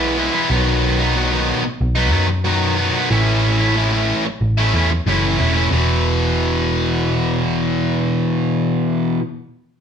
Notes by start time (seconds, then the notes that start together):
Already playing: B1 E3 G#3 B3 E4
0.18 E3 G#3 B3 E4
0.34 G#3 B3 E4
0.50 B1 B2 D#3 F#3 B3 D#4
0.99 F#3 B3 D#4
1.15 B2 D#3 F#3 B3 D#4
1.32 F#3 B3 D#4
1.64 muted distorted electric guitar stroke
1.81 B1
1.96 F#3 B3 D#4
2.11 F#2 D#3 F#3 B3 D#4
2.29 muted distorted electric guitar stroke
2.45 B2 D#3 F#3 B3 D#4
2.77 D#3 F#3 B3 D#4
2.93 F#3 B3 D#4
3.10 A1 A2 E3 A3 C#4 E4
3.59 A3 C#4 E4
3.75 A2 E3 A3 C#4 E4
3.92 A3 C#4 E4
4.25 muted distorted electric guitar stroke
4.41 A1
4.57 A3 C#4 E4
4.73 E2 E3 A3 C#4 E4
4.90 muted distorted electric guitar stroke
5.06 F#1 A2 E3 A3 C#4 E4
5.38 E1 E3 A3 C#4 E4
5.54 A3 C#4 E4
5.69 E1 E2 B2 E3